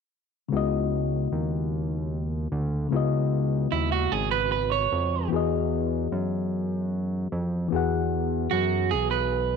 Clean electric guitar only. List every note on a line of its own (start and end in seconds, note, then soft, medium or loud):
3.72 3.91 E4 medium
3.92 4.12 F#4 medium
4.12 4.31 G#4 medium
4.31 4.51 B4 medium
4.52 4.71 B4 medium
4.72 5.29 C#5 medium
8.51 8.89 F#4 medium
8.91 9.10 G#4 medium
9.11 9.56 B4 medium